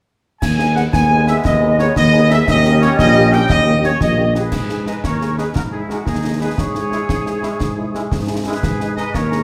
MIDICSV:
0, 0, Header, 1, 7, 480
1, 0, Start_track
1, 0, Key_signature, 5, "minor"
1, 0, Tempo, 342075
1, 594, Time_signature, 6, 3, 24, 8
1, 13235, End_track
2, 0, Start_track
2, 0, Title_t, "Trumpet section"
2, 0, Program_c, 0, 61
2, 578, Note_on_c, 0, 80, 112
2, 1031, Note_off_c, 0, 80, 0
2, 1061, Note_on_c, 0, 78, 96
2, 1172, Note_off_c, 0, 78, 0
2, 1311, Note_on_c, 0, 80, 108
2, 1758, Note_off_c, 0, 80, 0
2, 1792, Note_on_c, 0, 76, 105
2, 1900, Note_off_c, 0, 76, 0
2, 2030, Note_on_c, 0, 75, 98
2, 2477, Note_off_c, 0, 75, 0
2, 2514, Note_on_c, 0, 73, 117
2, 2621, Note_off_c, 0, 73, 0
2, 2756, Note_on_c, 0, 75, 127
2, 3200, Note_off_c, 0, 75, 0
2, 3244, Note_on_c, 0, 76, 123
2, 3349, Note_off_c, 0, 76, 0
2, 3490, Note_on_c, 0, 75, 127
2, 3927, Note_off_c, 0, 75, 0
2, 3951, Note_on_c, 0, 73, 111
2, 4059, Note_off_c, 0, 73, 0
2, 4196, Note_on_c, 0, 75, 127
2, 4639, Note_off_c, 0, 75, 0
2, 4676, Note_on_c, 0, 79, 115
2, 4893, Note_on_c, 0, 75, 127
2, 4912, Note_off_c, 0, 79, 0
2, 5346, Note_off_c, 0, 75, 0
2, 5398, Note_on_c, 0, 73, 102
2, 5616, Note_off_c, 0, 73, 0
2, 5633, Note_on_c, 0, 75, 101
2, 6077, Note_off_c, 0, 75, 0
2, 6109, Note_on_c, 0, 71, 79
2, 6778, Note_off_c, 0, 71, 0
2, 6824, Note_on_c, 0, 75, 75
2, 6933, Note_off_c, 0, 75, 0
2, 7068, Note_on_c, 0, 73, 85
2, 7514, Note_off_c, 0, 73, 0
2, 7542, Note_on_c, 0, 71, 75
2, 7768, Note_off_c, 0, 71, 0
2, 7782, Note_on_c, 0, 70, 83
2, 7891, Note_off_c, 0, 70, 0
2, 8021, Note_on_c, 0, 68, 76
2, 8131, Note_off_c, 0, 68, 0
2, 8265, Note_on_c, 0, 70, 70
2, 8374, Note_off_c, 0, 70, 0
2, 8506, Note_on_c, 0, 68, 80
2, 8954, Note_off_c, 0, 68, 0
2, 9000, Note_on_c, 0, 71, 80
2, 9218, Note_off_c, 0, 71, 0
2, 9245, Note_on_c, 0, 73, 93
2, 11582, Note_off_c, 0, 73, 0
2, 11869, Note_on_c, 0, 71, 89
2, 12539, Note_off_c, 0, 71, 0
2, 12576, Note_on_c, 0, 75, 100
2, 12806, Note_off_c, 0, 75, 0
2, 12833, Note_on_c, 0, 73, 99
2, 13235, Note_off_c, 0, 73, 0
2, 13235, End_track
3, 0, Start_track
3, 0, Title_t, "Flute section"
3, 0, Program_c, 1, 73
3, 593, Note_on_c, 1, 80, 100
3, 1039, Note_off_c, 1, 80, 0
3, 1060, Note_on_c, 1, 78, 89
3, 1144, Note_off_c, 1, 78, 0
3, 1296, Note_on_c, 1, 80, 99
3, 1750, Note_off_c, 1, 80, 0
3, 1801, Note_on_c, 1, 76, 93
3, 2024, Note_on_c, 1, 75, 89
3, 2036, Note_off_c, 1, 76, 0
3, 2474, Note_off_c, 1, 75, 0
3, 2529, Note_on_c, 1, 73, 94
3, 2760, Note_off_c, 1, 73, 0
3, 2761, Note_on_c, 1, 75, 111
3, 3202, Note_off_c, 1, 75, 0
3, 3223, Note_on_c, 1, 76, 110
3, 3449, Note_off_c, 1, 76, 0
3, 3474, Note_on_c, 1, 75, 119
3, 3943, Note_on_c, 1, 73, 100
3, 3952, Note_off_c, 1, 75, 0
3, 4163, Note_on_c, 1, 75, 110
3, 4169, Note_off_c, 1, 73, 0
3, 4656, Note_off_c, 1, 75, 0
3, 4658, Note_on_c, 1, 79, 105
3, 4886, Note_off_c, 1, 79, 0
3, 4916, Note_on_c, 1, 75, 108
3, 5387, Note_on_c, 1, 73, 84
3, 5392, Note_off_c, 1, 75, 0
3, 5611, Note_off_c, 1, 73, 0
3, 5633, Note_on_c, 1, 75, 91
3, 6077, Note_off_c, 1, 75, 0
3, 6122, Note_on_c, 1, 68, 65
3, 6785, Note_off_c, 1, 68, 0
3, 6840, Note_on_c, 1, 71, 68
3, 7058, Note_off_c, 1, 71, 0
3, 7095, Note_on_c, 1, 70, 73
3, 7551, Note_on_c, 1, 68, 63
3, 7562, Note_off_c, 1, 70, 0
3, 7635, Note_off_c, 1, 68, 0
3, 7783, Note_on_c, 1, 66, 69
3, 7867, Note_off_c, 1, 66, 0
3, 8018, Note_on_c, 1, 64, 62
3, 8246, Note_off_c, 1, 64, 0
3, 8257, Note_on_c, 1, 66, 68
3, 8503, Note_off_c, 1, 66, 0
3, 8503, Note_on_c, 1, 63, 67
3, 8974, Note_on_c, 1, 68, 70
3, 8986, Note_off_c, 1, 63, 0
3, 9202, Note_off_c, 1, 68, 0
3, 9219, Note_on_c, 1, 68, 79
3, 11569, Note_off_c, 1, 68, 0
3, 11876, Note_on_c, 1, 68, 79
3, 12543, Note_off_c, 1, 68, 0
3, 12594, Note_on_c, 1, 71, 79
3, 12816, Note_off_c, 1, 71, 0
3, 12838, Note_on_c, 1, 70, 82
3, 13235, Note_off_c, 1, 70, 0
3, 13235, End_track
4, 0, Start_track
4, 0, Title_t, "French horn section"
4, 0, Program_c, 2, 60
4, 818, Note_on_c, 2, 63, 72
4, 820, Note_on_c, 2, 68, 67
4, 824, Note_on_c, 2, 59, 63
4, 908, Note_off_c, 2, 63, 0
4, 909, Note_off_c, 2, 68, 0
4, 912, Note_off_c, 2, 59, 0
4, 1062, Note_on_c, 2, 63, 69
4, 1063, Note_on_c, 2, 59, 68
4, 1065, Note_on_c, 2, 68, 68
4, 1150, Note_off_c, 2, 63, 0
4, 1152, Note_off_c, 2, 59, 0
4, 1153, Note_off_c, 2, 68, 0
4, 1550, Note_on_c, 2, 59, 72
4, 1552, Note_on_c, 2, 63, 69
4, 1552, Note_on_c, 2, 68, 75
4, 1636, Note_off_c, 2, 59, 0
4, 1638, Note_off_c, 2, 63, 0
4, 1638, Note_off_c, 2, 68, 0
4, 1790, Note_on_c, 2, 63, 79
4, 1790, Note_on_c, 2, 68, 82
4, 1794, Note_on_c, 2, 59, 74
4, 1876, Note_off_c, 2, 68, 0
4, 1877, Note_off_c, 2, 63, 0
4, 1880, Note_off_c, 2, 59, 0
4, 2268, Note_on_c, 2, 59, 82
4, 2271, Note_on_c, 2, 63, 86
4, 2272, Note_on_c, 2, 68, 79
4, 2355, Note_off_c, 2, 59, 0
4, 2357, Note_off_c, 2, 63, 0
4, 2358, Note_off_c, 2, 68, 0
4, 2511, Note_on_c, 2, 68, 77
4, 2519, Note_on_c, 2, 59, 87
4, 2519, Note_on_c, 2, 63, 81
4, 2597, Note_off_c, 2, 68, 0
4, 2603, Note_off_c, 2, 63, 0
4, 2604, Note_off_c, 2, 59, 0
4, 2995, Note_on_c, 2, 63, 84
4, 2995, Note_on_c, 2, 68, 86
4, 2996, Note_on_c, 2, 59, 89
4, 3080, Note_off_c, 2, 63, 0
4, 3080, Note_off_c, 2, 68, 0
4, 3081, Note_off_c, 2, 59, 0
4, 3236, Note_on_c, 2, 59, 94
4, 3237, Note_on_c, 2, 68, 91
4, 3238, Note_on_c, 2, 63, 93
4, 3321, Note_off_c, 2, 59, 0
4, 3322, Note_off_c, 2, 68, 0
4, 3323, Note_off_c, 2, 63, 0
4, 3714, Note_on_c, 2, 61, 88
4, 3719, Note_on_c, 2, 58, 83
4, 3719, Note_on_c, 2, 67, 90
4, 3800, Note_off_c, 2, 61, 0
4, 3803, Note_off_c, 2, 58, 0
4, 3803, Note_off_c, 2, 67, 0
4, 3940, Note_on_c, 2, 58, 85
4, 3940, Note_on_c, 2, 61, 92
4, 3944, Note_on_c, 2, 67, 90
4, 4028, Note_off_c, 2, 61, 0
4, 4029, Note_off_c, 2, 58, 0
4, 4032, Note_off_c, 2, 67, 0
4, 4420, Note_on_c, 2, 58, 88
4, 4423, Note_on_c, 2, 61, 83
4, 4423, Note_on_c, 2, 67, 88
4, 4509, Note_off_c, 2, 58, 0
4, 4510, Note_off_c, 2, 61, 0
4, 4511, Note_off_c, 2, 67, 0
4, 4657, Note_on_c, 2, 58, 81
4, 4658, Note_on_c, 2, 61, 87
4, 4658, Note_on_c, 2, 67, 89
4, 4746, Note_off_c, 2, 58, 0
4, 4746, Note_off_c, 2, 61, 0
4, 4746, Note_off_c, 2, 67, 0
4, 5133, Note_on_c, 2, 61, 78
4, 5138, Note_on_c, 2, 58, 74
4, 5139, Note_on_c, 2, 67, 75
4, 5223, Note_off_c, 2, 61, 0
4, 5227, Note_off_c, 2, 58, 0
4, 5228, Note_off_c, 2, 67, 0
4, 5368, Note_on_c, 2, 58, 74
4, 5369, Note_on_c, 2, 61, 72
4, 5369, Note_on_c, 2, 67, 72
4, 5459, Note_off_c, 2, 58, 0
4, 5459, Note_off_c, 2, 67, 0
4, 5460, Note_off_c, 2, 61, 0
4, 5854, Note_on_c, 2, 67, 69
4, 5856, Note_on_c, 2, 61, 62
4, 5858, Note_on_c, 2, 58, 69
4, 5944, Note_off_c, 2, 67, 0
4, 5945, Note_off_c, 2, 61, 0
4, 5946, Note_off_c, 2, 58, 0
4, 6095, Note_on_c, 2, 61, 64
4, 6100, Note_on_c, 2, 58, 63
4, 6101, Note_on_c, 2, 67, 62
4, 6184, Note_off_c, 2, 61, 0
4, 6189, Note_off_c, 2, 58, 0
4, 6189, Note_off_c, 2, 67, 0
4, 6574, Note_on_c, 2, 63, 48
4, 6576, Note_on_c, 2, 56, 50
4, 6577, Note_on_c, 2, 68, 50
4, 6663, Note_off_c, 2, 63, 0
4, 6665, Note_off_c, 2, 56, 0
4, 6666, Note_off_c, 2, 68, 0
4, 6807, Note_on_c, 2, 56, 47
4, 6809, Note_on_c, 2, 68, 50
4, 6811, Note_on_c, 2, 63, 53
4, 6898, Note_off_c, 2, 56, 0
4, 6900, Note_off_c, 2, 68, 0
4, 6902, Note_off_c, 2, 63, 0
4, 7308, Note_on_c, 2, 63, 51
4, 7308, Note_on_c, 2, 68, 53
4, 7312, Note_on_c, 2, 56, 49
4, 7394, Note_off_c, 2, 63, 0
4, 7394, Note_off_c, 2, 68, 0
4, 7397, Note_off_c, 2, 56, 0
4, 7548, Note_on_c, 2, 63, 51
4, 7549, Note_on_c, 2, 56, 53
4, 7550, Note_on_c, 2, 68, 54
4, 7634, Note_off_c, 2, 63, 0
4, 7635, Note_off_c, 2, 56, 0
4, 7636, Note_off_c, 2, 68, 0
4, 8026, Note_on_c, 2, 56, 49
4, 8030, Note_on_c, 2, 63, 52
4, 8030, Note_on_c, 2, 68, 51
4, 8113, Note_off_c, 2, 56, 0
4, 8116, Note_off_c, 2, 63, 0
4, 8116, Note_off_c, 2, 68, 0
4, 8269, Note_on_c, 2, 63, 53
4, 8270, Note_on_c, 2, 56, 47
4, 8271, Note_on_c, 2, 68, 53
4, 8355, Note_off_c, 2, 63, 0
4, 8356, Note_off_c, 2, 56, 0
4, 8356, Note_off_c, 2, 68, 0
4, 8751, Note_on_c, 2, 68, 49
4, 8752, Note_on_c, 2, 56, 51
4, 8752, Note_on_c, 2, 63, 55
4, 8837, Note_off_c, 2, 68, 0
4, 8838, Note_off_c, 2, 56, 0
4, 8838, Note_off_c, 2, 63, 0
4, 8986, Note_on_c, 2, 63, 57
4, 8988, Note_on_c, 2, 56, 59
4, 8988, Note_on_c, 2, 68, 57
4, 9073, Note_off_c, 2, 63, 0
4, 9074, Note_off_c, 2, 68, 0
4, 9075, Note_off_c, 2, 56, 0
4, 9468, Note_on_c, 2, 64, 54
4, 9468, Note_on_c, 2, 68, 56
4, 9469, Note_on_c, 2, 56, 51
4, 9554, Note_off_c, 2, 64, 0
4, 9555, Note_off_c, 2, 56, 0
4, 9555, Note_off_c, 2, 68, 0
4, 9700, Note_on_c, 2, 56, 55
4, 9702, Note_on_c, 2, 64, 57
4, 9702, Note_on_c, 2, 68, 51
4, 9789, Note_off_c, 2, 56, 0
4, 9790, Note_off_c, 2, 64, 0
4, 9790, Note_off_c, 2, 68, 0
4, 10188, Note_on_c, 2, 56, 59
4, 10192, Note_on_c, 2, 68, 53
4, 10194, Note_on_c, 2, 64, 59
4, 10275, Note_off_c, 2, 56, 0
4, 10278, Note_off_c, 2, 68, 0
4, 10279, Note_off_c, 2, 64, 0
4, 10417, Note_on_c, 2, 56, 59
4, 10418, Note_on_c, 2, 68, 62
4, 10420, Note_on_c, 2, 64, 60
4, 10506, Note_off_c, 2, 56, 0
4, 10507, Note_off_c, 2, 68, 0
4, 10509, Note_off_c, 2, 64, 0
4, 10903, Note_on_c, 2, 56, 64
4, 10908, Note_on_c, 2, 68, 60
4, 10909, Note_on_c, 2, 64, 60
4, 10991, Note_off_c, 2, 56, 0
4, 10995, Note_off_c, 2, 64, 0
4, 10995, Note_off_c, 2, 68, 0
4, 11153, Note_on_c, 2, 56, 61
4, 11153, Note_on_c, 2, 64, 61
4, 11158, Note_on_c, 2, 68, 64
4, 11239, Note_off_c, 2, 56, 0
4, 11239, Note_off_c, 2, 64, 0
4, 11243, Note_off_c, 2, 68, 0
4, 11618, Note_on_c, 2, 64, 63
4, 11622, Note_on_c, 2, 56, 61
4, 11622, Note_on_c, 2, 68, 64
4, 11707, Note_off_c, 2, 64, 0
4, 11710, Note_off_c, 2, 56, 0
4, 11710, Note_off_c, 2, 68, 0
4, 11859, Note_on_c, 2, 56, 61
4, 11861, Note_on_c, 2, 64, 67
4, 11862, Note_on_c, 2, 68, 63
4, 11948, Note_off_c, 2, 56, 0
4, 11949, Note_off_c, 2, 64, 0
4, 11951, Note_off_c, 2, 68, 0
4, 12339, Note_on_c, 2, 68, 61
4, 12340, Note_on_c, 2, 63, 60
4, 12346, Note_on_c, 2, 56, 62
4, 12428, Note_off_c, 2, 68, 0
4, 12429, Note_off_c, 2, 63, 0
4, 12434, Note_off_c, 2, 56, 0
4, 12582, Note_on_c, 2, 63, 62
4, 12584, Note_on_c, 2, 68, 61
4, 12589, Note_on_c, 2, 56, 63
4, 12670, Note_off_c, 2, 63, 0
4, 12672, Note_off_c, 2, 68, 0
4, 12676, Note_off_c, 2, 56, 0
4, 13059, Note_on_c, 2, 56, 63
4, 13059, Note_on_c, 2, 68, 58
4, 13060, Note_on_c, 2, 63, 60
4, 13148, Note_off_c, 2, 56, 0
4, 13148, Note_off_c, 2, 68, 0
4, 13149, Note_off_c, 2, 63, 0
4, 13235, End_track
5, 0, Start_track
5, 0, Title_t, "Trombone section"
5, 0, Program_c, 3, 61
5, 594, Note_on_c, 3, 56, 79
5, 595, Note_on_c, 3, 59, 80
5, 3414, Note_off_c, 3, 56, 0
5, 3414, Note_off_c, 3, 59, 0
5, 3483, Note_on_c, 3, 55, 110
5, 3488, Note_on_c, 3, 61, 101
5, 6058, Note_off_c, 3, 55, 0
5, 6061, Note_off_c, 3, 61, 0
5, 6840, Note_on_c, 3, 56, 60
5, 6843, Note_on_c, 3, 63, 61
5, 6924, Note_off_c, 3, 56, 0
5, 6927, Note_off_c, 3, 63, 0
5, 7549, Note_on_c, 3, 63, 55
5, 7558, Note_on_c, 3, 56, 55
5, 7633, Note_off_c, 3, 63, 0
5, 7642, Note_off_c, 3, 56, 0
5, 8277, Note_on_c, 3, 63, 59
5, 8280, Note_on_c, 3, 56, 63
5, 8361, Note_off_c, 3, 63, 0
5, 8364, Note_off_c, 3, 56, 0
5, 8995, Note_on_c, 3, 63, 62
5, 8999, Note_on_c, 3, 56, 62
5, 9079, Note_off_c, 3, 63, 0
5, 9083, Note_off_c, 3, 56, 0
5, 9707, Note_on_c, 3, 64, 67
5, 9708, Note_on_c, 3, 56, 64
5, 9791, Note_off_c, 3, 64, 0
5, 9793, Note_off_c, 3, 56, 0
5, 10415, Note_on_c, 3, 64, 69
5, 10426, Note_on_c, 3, 56, 67
5, 10504, Note_off_c, 3, 64, 0
5, 10511, Note_off_c, 3, 56, 0
5, 11137, Note_on_c, 3, 56, 75
5, 11139, Note_on_c, 3, 64, 68
5, 11225, Note_off_c, 3, 56, 0
5, 11226, Note_off_c, 3, 64, 0
5, 11869, Note_on_c, 3, 64, 70
5, 11871, Note_on_c, 3, 56, 69
5, 11953, Note_off_c, 3, 64, 0
5, 11956, Note_off_c, 3, 56, 0
5, 12585, Note_on_c, 3, 63, 74
5, 12590, Note_on_c, 3, 56, 76
5, 12671, Note_off_c, 3, 63, 0
5, 12674, Note_off_c, 3, 56, 0
5, 13235, End_track
6, 0, Start_track
6, 0, Title_t, "Tuba"
6, 0, Program_c, 4, 58
6, 595, Note_on_c, 4, 39, 86
6, 1193, Note_off_c, 4, 39, 0
6, 1307, Note_on_c, 4, 39, 92
6, 1909, Note_off_c, 4, 39, 0
6, 2031, Note_on_c, 4, 39, 90
6, 2630, Note_off_c, 4, 39, 0
6, 2752, Note_on_c, 4, 39, 110
6, 3350, Note_off_c, 4, 39, 0
6, 3471, Note_on_c, 4, 39, 113
6, 4069, Note_off_c, 4, 39, 0
6, 4189, Note_on_c, 4, 34, 114
6, 4788, Note_off_c, 4, 34, 0
6, 4913, Note_on_c, 4, 39, 94
6, 5510, Note_off_c, 4, 39, 0
6, 5636, Note_on_c, 4, 34, 86
6, 6232, Note_off_c, 4, 34, 0
6, 6362, Note_on_c, 4, 44, 64
6, 6955, Note_off_c, 4, 44, 0
6, 7067, Note_on_c, 4, 39, 65
6, 7667, Note_off_c, 4, 39, 0
6, 7789, Note_on_c, 4, 44, 59
6, 8388, Note_off_c, 4, 44, 0
6, 8507, Note_on_c, 4, 39, 64
6, 9108, Note_off_c, 4, 39, 0
6, 9237, Note_on_c, 4, 44, 64
6, 9833, Note_off_c, 4, 44, 0
6, 9949, Note_on_c, 4, 44, 73
6, 10496, Note_off_c, 4, 44, 0
6, 10676, Note_on_c, 4, 44, 72
6, 11273, Note_off_c, 4, 44, 0
6, 11394, Note_on_c, 4, 44, 82
6, 11992, Note_off_c, 4, 44, 0
6, 12106, Note_on_c, 4, 44, 74
6, 12708, Note_off_c, 4, 44, 0
6, 12837, Note_on_c, 4, 39, 77
6, 13235, Note_off_c, 4, 39, 0
6, 13235, End_track
7, 0, Start_track
7, 0, Title_t, "Drums"
7, 591, Note_on_c, 9, 35, 84
7, 591, Note_on_c, 9, 38, 76
7, 591, Note_on_c, 9, 49, 59
7, 731, Note_off_c, 9, 35, 0
7, 731, Note_off_c, 9, 38, 0
7, 731, Note_off_c, 9, 49, 0
7, 832, Note_on_c, 9, 38, 57
7, 973, Note_off_c, 9, 38, 0
7, 1070, Note_on_c, 9, 38, 52
7, 1210, Note_off_c, 9, 38, 0
7, 1309, Note_on_c, 9, 35, 83
7, 1309, Note_on_c, 9, 38, 84
7, 1449, Note_off_c, 9, 35, 0
7, 1449, Note_off_c, 9, 38, 0
7, 1788, Note_on_c, 9, 38, 60
7, 1929, Note_off_c, 9, 38, 0
7, 2032, Note_on_c, 9, 35, 90
7, 2032, Note_on_c, 9, 38, 80
7, 2172, Note_off_c, 9, 35, 0
7, 2172, Note_off_c, 9, 38, 0
7, 2512, Note_on_c, 9, 38, 57
7, 2653, Note_off_c, 9, 38, 0
7, 2753, Note_on_c, 9, 35, 81
7, 2753, Note_on_c, 9, 38, 86
7, 2894, Note_off_c, 9, 35, 0
7, 2894, Note_off_c, 9, 38, 0
7, 3233, Note_on_c, 9, 38, 63
7, 3373, Note_off_c, 9, 38, 0
7, 3477, Note_on_c, 9, 35, 92
7, 3477, Note_on_c, 9, 38, 77
7, 3477, Note_on_c, 9, 49, 36
7, 3617, Note_off_c, 9, 35, 0
7, 3617, Note_off_c, 9, 38, 0
7, 3617, Note_off_c, 9, 49, 0
7, 3715, Note_on_c, 9, 38, 60
7, 3855, Note_off_c, 9, 38, 0
7, 3954, Note_on_c, 9, 38, 53
7, 4095, Note_off_c, 9, 38, 0
7, 4193, Note_on_c, 9, 35, 91
7, 4193, Note_on_c, 9, 38, 84
7, 4333, Note_off_c, 9, 35, 0
7, 4333, Note_off_c, 9, 38, 0
7, 4668, Note_on_c, 9, 38, 55
7, 4809, Note_off_c, 9, 38, 0
7, 4906, Note_on_c, 9, 35, 97
7, 4906, Note_on_c, 9, 38, 75
7, 5046, Note_off_c, 9, 35, 0
7, 5046, Note_off_c, 9, 38, 0
7, 5385, Note_on_c, 9, 38, 52
7, 5525, Note_off_c, 9, 38, 0
7, 5624, Note_on_c, 9, 35, 80
7, 5624, Note_on_c, 9, 38, 76
7, 5764, Note_off_c, 9, 35, 0
7, 5764, Note_off_c, 9, 38, 0
7, 6107, Note_on_c, 9, 38, 57
7, 6247, Note_off_c, 9, 38, 0
7, 6342, Note_on_c, 9, 35, 74
7, 6342, Note_on_c, 9, 38, 66
7, 6342, Note_on_c, 9, 49, 44
7, 6482, Note_off_c, 9, 35, 0
7, 6482, Note_off_c, 9, 38, 0
7, 6482, Note_off_c, 9, 49, 0
7, 6586, Note_on_c, 9, 38, 48
7, 6726, Note_off_c, 9, 38, 0
7, 6829, Note_on_c, 9, 38, 46
7, 6970, Note_off_c, 9, 38, 0
7, 7070, Note_on_c, 9, 35, 69
7, 7070, Note_on_c, 9, 38, 69
7, 7210, Note_off_c, 9, 35, 0
7, 7210, Note_off_c, 9, 38, 0
7, 7316, Note_on_c, 9, 38, 46
7, 7456, Note_off_c, 9, 38, 0
7, 7556, Note_on_c, 9, 38, 51
7, 7696, Note_off_c, 9, 38, 0
7, 7796, Note_on_c, 9, 35, 75
7, 7796, Note_on_c, 9, 38, 68
7, 7936, Note_off_c, 9, 35, 0
7, 7936, Note_off_c, 9, 38, 0
7, 8280, Note_on_c, 9, 38, 46
7, 8420, Note_off_c, 9, 38, 0
7, 8510, Note_on_c, 9, 35, 71
7, 8510, Note_on_c, 9, 38, 58
7, 8650, Note_off_c, 9, 35, 0
7, 8650, Note_off_c, 9, 38, 0
7, 9233, Note_on_c, 9, 35, 79
7, 9233, Note_on_c, 9, 38, 71
7, 9374, Note_off_c, 9, 35, 0
7, 9374, Note_off_c, 9, 38, 0
7, 9469, Note_on_c, 9, 38, 48
7, 9610, Note_off_c, 9, 38, 0
7, 9712, Note_on_c, 9, 38, 46
7, 9852, Note_off_c, 9, 38, 0
7, 9950, Note_on_c, 9, 35, 79
7, 9950, Note_on_c, 9, 38, 73
7, 10091, Note_off_c, 9, 35, 0
7, 10091, Note_off_c, 9, 38, 0
7, 10192, Note_on_c, 9, 38, 44
7, 10332, Note_off_c, 9, 38, 0
7, 10427, Note_on_c, 9, 38, 50
7, 10568, Note_off_c, 9, 38, 0
7, 10670, Note_on_c, 9, 35, 74
7, 10670, Note_on_c, 9, 38, 72
7, 10811, Note_off_c, 9, 35, 0
7, 10811, Note_off_c, 9, 38, 0
7, 11152, Note_on_c, 9, 38, 47
7, 11292, Note_off_c, 9, 38, 0
7, 11387, Note_on_c, 9, 35, 78
7, 11387, Note_on_c, 9, 38, 65
7, 11527, Note_off_c, 9, 35, 0
7, 11527, Note_off_c, 9, 38, 0
7, 12113, Note_on_c, 9, 35, 82
7, 12113, Note_on_c, 9, 38, 69
7, 12113, Note_on_c, 9, 49, 31
7, 12253, Note_off_c, 9, 35, 0
7, 12253, Note_off_c, 9, 38, 0
7, 12253, Note_off_c, 9, 49, 0
7, 12354, Note_on_c, 9, 38, 49
7, 12494, Note_off_c, 9, 38, 0
7, 12594, Note_on_c, 9, 38, 48
7, 12735, Note_off_c, 9, 38, 0
7, 12831, Note_on_c, 9, 35, 74
7, 12831, Note_on_c, 9, 38, 69
7, 12971, Note_off_c, 9, 35, 0
7, 12971, Note_off_c, 9, 38, 0
7, 13079, Note_on_c, 9, 38, 49
7, 13219, Note_off_c, 9, 38, 0
7, 13235, End_track
0, 0, End_of_file